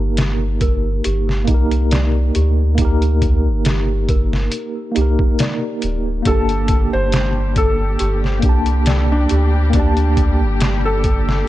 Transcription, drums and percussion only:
0.17 snare, closed hi-hat
0.61 kick, closed hi-hat
1.04 closed hi-hat
1.29 snare
1.48 kick, closed hi-hat
1.71 closed hi-hat
1.91 snare, closed hi-hat
2.35 closed hi-hat
2.78 kick, closed hi-hat
3.02 closed hi-hat
3.22 kick, closed hi-hat
3.65 snare, closed hi-hat
4.09 kick, closed hi-hat
4.33 snare
4.52 closed hi-hat
4.96 closed hi-hat
5.19 kick
5.39 snare, closed hi-hat
5.82 closed hi-hat
6.25 kick, closed hi-hat
6.49 closed hi-hat
6.68 kick, closed hi-hat
7.12 snare, closed hi-hat
7.56 kick, closed hi-hat
7.99 closed hi-hat
8.24 snare
8.42 kick, closed hi-hat
8.66 closed hi-hat
8.86 snare, closed hi-hat
9.29 closed hi-hat
9.73 kick, closed hi-hat
9.97 closed hi-hat
10.17 kick, closed hi-hat
10.61 snare, closed hi-hat
11.04 kick, closed hi-hat
11.29 snare

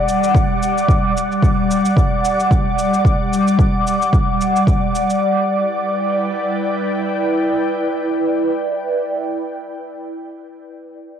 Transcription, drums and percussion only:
0.09 shaker
0.24 shaker
0.35 kick, shaker
0.63 shaker
0.78 shaker
0.89 kick, shaker
1.17 shaker
1.32 shaker
1.43 kick, shaker
1.71 shaker
1.85 shaker
1.97 kick, shaker
2.25 shaker
2.40 shaker
2.51 kick, shaker
2.79 shaker
2.94 shaker
3.05 kick, shaker
3.33 shaker
3.48 shaker
3.59 kick, shaker
3.87 shaker
4.02 shaker
4.13 kick, shaker
4.41 shaker
4.56 shaker
4.67 kick, shaker
4.95 shaker
5.10 shaker

